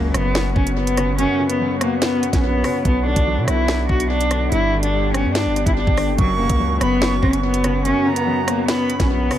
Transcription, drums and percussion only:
0.14 cross-stick loud
0.14 closed hi-hat medium
0.35 snare loud
0.56 kick loud
0.67 closed hi-hat medium
0.87 closed hi-hat medium
0.97 cross-stick medium
0.97 closed hi-hat medium
1.18 closed hi-hat medium
1.50 closed hi-hat medium
1.81 cross-stick loud
1.81 closed hi-hat loud
2.02 snare loud
2.02 closed hi-hat medium
2.23 closed hi-hat medium
2.33 kick loud
2.33 snare medium
2.33 closed hi-hat medium
2.64 cross-stick medium
2.64 open hi-hat medium
2.85 kick loud
2.85 closed hi-hat medium
3.16 kick loud
3.16 closed hi-hat medium
3.48 cross-stick loud
3.48 closed hi-hat loud
3.68 snare loud
3.89 kick loud
4.00 closed hi-hat medium
4.21 closed hi-hat medium
4.31 cross-stick medium
4.31 closed hi-hat medium
4.52 closed hi-hat medium
4.83 closed hi-hat medium
5.14 cross-stick medium
5.14 closed hi-hat loud
5.35 snare loud
5.35 closed hi-hat medium
5.56 closed hi-hat medium
5.66 kick loud
5.66 closed hi-hat medium
5.87 kick loud
5.97 cross-stick medium
5.97 open hi-hat medium
6.18 kick loud
6.18 closed hi-hat medium
6.50 kick loud
6.50 closed hi-hat medium
6.81 cross-stick loud
6.81 closed hi-hat loud
7.02 snare loud
7.23 kick loud
7.33 closed hi-hat medium
7.54 closed hi-hat medium
7.64 cross-stick medium
7.64 closed hi-hat medium
7.85 closed hi-hat medium
8.16 closed hi-hat medium
8.48 cross-stick loud
8.48 closed hi-hat medium
8.68 snare loud
8.68 closed hi-hat medium
8.90 closed hi-hat medium
9.00 kick loud
9.00 snare medium
9.00 closed hi-hat medium
9.31 cross-stick medium
9.31 open hi-hat medium

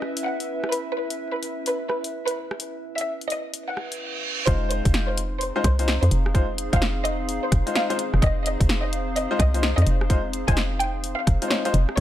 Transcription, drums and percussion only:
0.02 cross-stick medium
0.17 closed hi-hat medium
0.40 closed hi-hat medium
0.64 cross-stick medium
0.72 closed hi-hat medium
1.10 closed hi-hat medium
1.43 closed hi-hat medium
1.66 closed hi-hat medium
1.90 cross-stick medium
2.04 closed hi-hat medium
2.28 closed hi-hat medium
2.51 cross-stick medium
2.60 closed hi-hat medium
2.98 closed hi-hat medium
3.21 closed hi-hat soft
3.30 closed hi-hat medium
3.54 closed hi-hat medium
3.77 cross-stick medium
3.92 closed hi-hat medium
4.47 kick loud
4.47 closed hi-hat medium
4.71 closed hi-hat loud
4.85 kick loud
4.85 closed hi-hat medium
4.94 snare loud
5.18 closed hi-hat loud
5.41 closed hi-hat medium
5.64 kick loud
5.64 cross-stick medium
5.64 closed hi-hat loud
5.79 closed hi-hat medium
5.88 snare loud
6.03 closed hi-hat medium
6.11 closed hi-hat loud
6.26 cross-stick medium
6.35 kick loud
6.35 closed hi-hat medium
6.58 closed hi-hat loud
6.73 kick loud
6.73 closed hi-hat medium
6.82 snare loud
7.05 closed hi-hat loud
7.29 closed hi-hat medium
7.52 kick loud
7.52 cross-stick medium
7.52 closed hi-hat loud
7.67 closed hi-hat medium
7.75 snare loud
7.90 closed hi-hat soft
7.99 closed hi-hat loud
8.14 cross-stick medium
8.22 kick loud
8.22 closed hi-hat medium
8.46 closed hi-hat loud
8.60 kick loud
8.60 closed hi-hat medium
8.69 snare loud
8.93 closed hi-hat loud
9.16 closed hi-hat medium
9.40 kick loud
9.40 cross-stick medium
9.40 closed hi-hat loud
9.54 closed hi-hat medium
9.63 snare loud
9.78 closed hi-hat soft
9.87 closed hi-hat loud
10.01 cross-stick medium
10.10 kick loud
10.10 closed hi-hat medium
10.33 closed hi-hat loud
10.48 kick loud
10.48 closed hi-hat medium
10.57 snare loud
10.80 closed hi-hat loud
11.04 closed hi-hat medium
11.27 kick loud
11.27 cross-stick medium
11.27 closed hi-hat loud
11.42 closed hi-hat medium
11.51 snare loud
11.65 closed hi-hat medium
11.74 closed hi-hat loud
11.89 cross-stick medium
11.97 kick loud

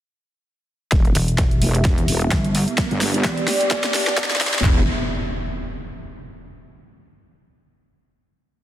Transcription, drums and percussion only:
0.92 kick loud
0.92 snare soft
0.92 closed hi-hat medium
1.05 closed hi-hat soft
1.15 open hi-hat loud
1.28 closed hi-hat medium
1.38 kick loud
1.38 snare soft
1.38 closed hi-hat medium
1.51 closed hi-hat soft
1.62 open hi-hat loud
1.75 closed hi-hat medium
1.85 kick loud
1.85 snare medium
1.85 closed hi-hat medium
1.98 closed hi-hat soft
2.08 open hi-hat loud
2.21 closed hi-hat soft
2.31 kick loud
2.31 snare medium
2.31 closed hi-hat medium
2.44 closed hi-hat soft
2.55 open hi-hat loud
2.68 closed hi-hat soft
2.78 kick loud
2.78 snare medium
2.78 closed hi-hat medium
2.91 closed hi-hat soft
3.01 snare medium
3.01 open hi-hat loud
3.14 closed hi-hat medium
3.24 kick loud
3.24 snare medium
3.24 closed hi-hat medium
3.38 closed hi-hat soft
3.48 snare medium
3.48 open hi-hat loud
3.61 closed hi-hat medium
3.71 kick loud
3.71 snare medium
3.71 closed hi-hat medium
3.84 snare medium
3.84 closed hi-hat soft
3.94 snare medium
3.94 open hi-hat loud
4.07 snare medium
4.18 kick loud
4.18 snare loud
4.18 closed hi-hat medium
4.24 snare medium
4.31 snare medium
4.31 closed hi-hat soft
4.36 snare medium
4.41 snare loud
4.41 open hi-hat loud
4.47 snare loud
4.54 snare loud
4.59 snare loud
4.64 kick loud
4.64 clap medium
4.64 floor tom loud

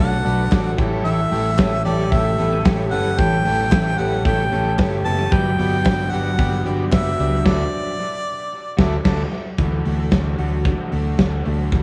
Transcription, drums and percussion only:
0.25 hi-hat pedal medium
0.25 open hi-hat medium
0.52 kick loud
0.52 snare loud
0.52 clap medium
0.52 hi-hat pedal medium
0.52 open hi-hat medium
0.78 kick loud
0.78 hi-hat pedal medium
0.78 open hi-hat medium
1.05 hi-hat pedal medium
1.05 open hi-hat medium
1.32 hi-hat pedal medium
1.32 open hi-hat medium
1.58 kick loud
1.58 snare loud
1.58 clap loud
1.58 hi-hat pedal medium
1.58 open hi-hat medium
1.85 hi-hat pedal medium
1.85 open hi-hat medium
2.12 kick loud
2.12 hi-hat pedal medium
2.12 open hi-hat medium
2.38 hi-hat pedal medium
2.38 open hi-hat medium
2.65 kick loud
2.65 snare loud
2.65 clap medium
2.65 hi-hat pedal medium
2.65 open hi-hat medium
2.92 hi-hat pedal medium
2.92 open hi-hat medium
3.18 kick loud
3.18 hi-hat pedal medium
3.18 open hi-hat medium
3.45 hi-hat pedal medium
3.45 open hi-hat medium
3.72 kick loud
3.72 snare loud
3.72 clap loud
3.72 hi-hat pedal medium
3.72 open hi-hat medium
3.98 hi-hat pedal medium
3.98 open hi-hat medium
4.25 kick loud
4.25 hi-hat pedal medium
4.25 open hi-hat medium
4.52 hi-hat pedal medium
4.52 open hi-hat medium
4.79 kick loud
4.79 snare loud
4.79 clap medium
4.79 hi-hat pedal medium
4.79 open hi-hat medium
5.06 hi-hat pedal medium
5.06 open hi-hat medium
5.32 kick loud
5.32 hi-hat pedal medium
5.32 open hi-hat medium
5.59 hi-hat pedal medium
5.59 open hi-hat medium
5.85 kick loud
5.85 snare loud
5.85 clap loud
5.85 hi-hat pedal medium
5.85 open hi-hat medium
6.12 hi-hat pedal medium
6.12 open hi-hat medium
6.39 kick loud
6.39 hi-hat pedal medium
6.39 open hi-hat medium
6.65 hi-hat pedal medium
6.65 open hi-hat medium
6.92 kick loud
6.92 snare loud
6.92 clap medium
6.92 hi-hat pedal medium
6.92 open hi-hat medium
7.19 hi-hat pedal medium
7.19 open hi-hat medium
7.46 kick loud
7.46 snare loud
7.46 crash medium
8.79 kick loud
8.79 snare loud
9.05 kick loud
9.05 snare loud
9.05 crash medium
9.58 kick loud
9.58 closed hi-hat medium
9.85 open hi-hat medium
10.11 kick loud
10.11 snare loud
10.11 closed hi-hat medium
10.38 open hi-hat medium
10.65 kick loud
10.65 closed hi-hat medium
10.92 open hi-hat medium
11.19 kick loud
11.19 snare loud
11.19 closed hi-hat medium
11.45 open hi-hat medium
11.72 kick loud
11.72 closed hi-hat medium

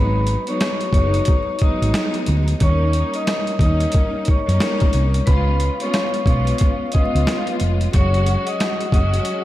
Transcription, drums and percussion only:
0.27 closed hi-hat medium
0.47 closed hi-hat soft
0.61 cross-stick loud
0.61 snare loud
0.61 closed hi-hat medium
0.81 closed hi-hat soft
0.93 kick loud
0.93 closed hi-hat medium
1.14 closed hi-hat medium
1.25 kick loud
1.25 closed hi-hat medium
1.59 kick medium
1.59 closed hi-hat medium
1.82 closed hi-hat medium
1.94 cross-stick loud
1.94 snare loud
1.94 closed hi-hat loud
2.14 closed hi-hat soft
2.26 closed hi-hat medium
2.48 closed hi-hat soft
2.60 kick loud
2.60 closed hi-hat medium
2.93 closed hi-hat medium
3.14 closed hi-hat soft
3.27 cross-stick loud
3.27 snare loud
3.27 closed hi-hat medium
3.47 closed hi-hat soft
3.59 kick loud
3.59 closed hi-hat medium
3.80 closed hi-hat medium
3.92 kick loud
3.92 closed hi-hat medium
4.25 kick medium
4.25 closed hi-hat medium
4.49 closed hi-hat medium
4.60 cross-stick loud
4.60 snare loud
4.60 closed hi-hat loud
4.80 kick medium
4.80 closed hi-hat soft
4.93 closed hi-hat medium
5.14 closed hi-hat medium
5.27 kick loud
5.27 closed hi-hat medium
5.60 closed hi-hat medium
5.80 closed hi-hat soft
5.94 cross-stick loud
5.94 snare loud
5.94 closed hi-hat medium
6.14 closed hi-hat soft
6.26 kick loud
6.26 closed hi-hat medium
6.47 closed hi-hat medium
6.58 kick loud
6.58 closed hi-hat medium
6.92 kick medium
6.92 closed hi-hat medium
7.16 closed hi-hat medium
7.27 cross-stick loud
7.27 snare loud
7.27 closed hi-hat loud
7.47 closed hi-hat soft
7.60 closed hi-hat medium
7.81 closed hi-hat medium
7.93 kick loud
7.93 closed hi-hat medium
8.14 closed hi-hat soft
8.26 closed hi-hat medium
8.47 closed hi-hat soft
8.60 cross-stick loud
8.60 snare loud
8.60 closed hi-hat medium
8.81 closed hi-hat soft
8.92 kick loud
8.92 closed hi-hat medium
9.14 closed hi-hat medium
9.25 closed hi-hat medium

